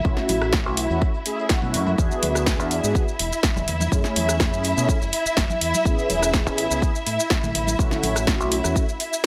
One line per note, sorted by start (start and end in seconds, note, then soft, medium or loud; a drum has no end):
0.00 1.97 E4 medium
0.00 1.97 E5 medium
0.04 0.15 B1 medium
0.04 0.87 A3 medium
0.04 0.87 C#4 medium
0.04 0.87 E4 medium
0.04 0.87 F#4 medium
0.04 kick loud
0.04 maracas soft
0.17 snare soft
0.17 maracas soft
0.29 0.66 A1 medium
0.29 open hi-hat loud
0.29 high conga medium
0.29 maracas medium
0.42 cross-stick medium
0.42 maracas soft
0.53 kick loud
0.53 snare loud
0.66 0.85 B1 medium
0.66 maracas soft
0.77 open hi-hat loud
0.77 maracas medium
0.90 0.99 E2 medium
0.90 1.10 A3 medium
0.90 1.10 C#4 medium
0.90 1.10 E4 medium
0.90 1.10 F#4 medium
0.90 maracas soft
1.02 kick loud
1.02 maracas soft
1.14 maracas soft
1.26 1.47 A3 medium
1.26 1.47 C#4 medium
1.26 1.47 E4 medium
1.26 1.48 G#4 medium
1.26 open hi-hat loud
1.26 maracas medium
1.39 maracas soft
1.49 1.59 A3 medium
1.49 1.60 C#4 medium
1.49 1.60 E4 medium
1.49 1.60 F#4 loud
1.49 kick loud
1.49 snare loud
1.49 open hi-hat medium
1.62 1.76 B2 medium
1.62 1.96 A3 medium
1.62 1.96 C#4 medium
1.62 1.96 E4 medium
1.62 1.96 F#4 medium
1.62 high conga medium
1.62 maracas soft
1.74 1.94 F#2 medium
1.74 open hi-hat loud
1.74 maracas medium
1.87 high conga medium
1.87 maracas soft
1.97 2.09 E2 loud
1.97 2.80 B3 medium
1.97 2.80 D4 medium
1.97 9.26 E4 medium
1.97 2.81 F#4 medium
1.97 2.81 G#4 medium
1.97 9.26 E5 medium
1.97 kick loud
1.97 maracas soft
1.97 shaker medium
2.11 maracas soft
2.11 shaker soft
2.22 2.59 D2 medium
2.22 open hi-hat loud
2.22 high conga medium
2.22 maracas medium
2.35 cross-stick medium
2.35 shaker medium
2.35 maracas soft
2.46 kick loud
2.46 snare loud
2.46 shaker medium
2.59 2.79 E2 medium
2.59 maracas soft
2.59 shaker soft
2.71 open hi-hat loud
2.71 maracas medium
2.83 2.93 G#2 medium
2.83 3.03 B3 medium
2.83 3.03 D4 medium
2.83 3.03 F#4 medium
2.83 3.04 G#4 medium
2.83 shaker medium
2.83 maracas soft
2.95 kick loud
2.95 maracas medium
2.95 shaker medium
3.08 maracas soft
3.08 shaker soft
3.19 3.30 E1 medium
3.19 open hi-hat loud
3.19 maracas medium
3.32 shaker medium
3.32 maracas soft
3.43 kick loud
3.43 snare loud
3.43 maracas soft
3.43 shaker medium
3.56 3.66 E1 medium
3.56 high conga medium
3.56 low conga medium
3.56 maracas soft
3.56 shaker soft
3.67 3.87 E2 medium
3.67 open hi-hat loud
3.67 low conga medium
3.67 maracas medium
3.80 high conga medium
3.80 maracas soft
3.80 shaker medium
3.91 4.02 F#2 medium
3.91 4.74 A3 medium
3.91 4.74 C#4 medium
3.91 4.74 E4 medium
3.91 4.75 G#4 medium
3.91 kick loud
3.91 maracas soft
3.91 shaker medium
4.04 snare soft
4.04 maracas soft
4.04 shaker soft
4.16 4.53 E2 medium
4.16 open hi-hat loud
4.16 high conga medium
4.16 maracas medium
4.29 cross-stick medium
4.29 maracas soft
4.29 shaker medium
4.40 kick loud
4.40 snare loud
4.40 shaker medium
4.53 4.72 F#2 loud
4.53 maracas soft
4.53 shaker soft
4.64 open hi-hat loud
4.64 maracas medium
4.76 4.87 B2 medium
4.76 4.97 A3 medium
4.76 4.97 C#4 medium
4.76 4.97 E4 medium
4.76 4.97 G#4 medium
4.76 maracas soft
4.76 shaker medium
4.88 kick loud
4.88 maracas medium
4.88 shaker medium
5.01 5.11 F#1 medium
5.01 maracas soft
5.01 shaker soft
5.13 open hi-hat loud
5.13 maracas medium
5.25 muted fingered electric bass stroke soft
5.25 maracas soft
5.25 shaker medium
5.37 5.47 F#1 medium
5.37 kick loud
5.37 snare loud
5.37 open hi-hat medium
5.37 maracas medium
5.37 shaker medium
5.49 high conga medium
5.49 maracas soft
5.49 shaker soft
5.61 5.71 E2 medium
5.61 open hi-hat loud
5.61 maracas medium
5.73 high conga medium
5.73 maracas soft
5.73 shaker medium
5.85 5.96 A1 medium
5.85 6.67 B3 medium
5.85 6.67 C#4 medium
5.85 6.68 E4 medium
5.85 6.68 G#4 medium
5.85 kick loud
5.85 maracas soft
5.85 shaker medium
5.98 maracas soft
5.98 shaker soft
6.09 6.46 E1 medium
6.09 open hi-hat loud
6.09 high conga medium
6.09 maracas loud
6.22 cross-stick medium
6.22 maracas soft
6.22 shaker medium
6.34 kick loud
6.34 snare loud
6.34 maracas soft
6.34 shaker medium
6.46 6.66 A1 loud
6.46 maracas soft
6.46 shaker soft
6.58 open hi-hat medium
6.58 maracas loud
6.70 6.80 C#2 medium
6.70 6.90 B3 medium
6.70 6.90 C#4 medium
6.70 6.90 E4 medium
6.70 6.91 G#4 medium
6.70 maracas soft
6.70 shaker medium
6.82 kick loud
6.82 maracas medium
6.82 shaker medium
6.95 maracas soft
6.95 shaker soft
7.06 7.17 A2 medium
7.06 open hi-hat loud
7.06 maracas medium
7.20 shaker medium
7.20 maracas soft
7.30 kick loud
7.30 snare loud
7.30 shaker medium
7.30 maracas medium
7.43 7.53 A2 medium
7.43 high conga medium
7.43 low conga medium
7.43 maracas soft
7.43 shaker soft
7.55 7.75 A1 loud
7.55 open hi-hat loud
7.55 low conga medium
7.55 maracas medium
7.67 high conga medium
7.67 maracas soft
7.67 shaker medium
7.79 7.89 B1 loud
7.79 8.61 A3 medium
7.79 8.61 C#4 medium
7.79 8.61 E4 medium
7.79 8.62 F#4 medium
7.79 kick loud
7.79 maracas medium
7.79 shaker medium
7.91 snare soft
7.91 low conga medium
7.91 maracas soft
7.91 shaker soft
8.03 8.40 A1 medium
8.03 open hi-hat loud
8.03 high conga medium
8.03 maracas loud
8.15 cross-stick medium
8.15 maracas soft
8.15 shaker medium
8.27 kick loud
8.27 snare loud
8.27 maracas medium
8.27 shaker medium
8.40 8.59 B1 loud
8.40 maracas soft
8.40 shaker soft
8.52 open hi-hat loud
8.52 maracas medium
8.63 8.74 E2 medium
8.63 8.84 A3 medium
8.63 8.84 C#4 medium
8.63 8.84 E4 medium
8.63 8.84 F#4 medium
8.63 cross-stick medium
8.63 maracas soft
8.63 shaker medium
8.76 kick loud
8.76 maracas soft
8.76 shaker medium
8.88 maracas soft
8.88 shaker soft
9.00 open hi-hat loud
9.00 maracas loud
9.13 shaker medium
9.13 maracas soft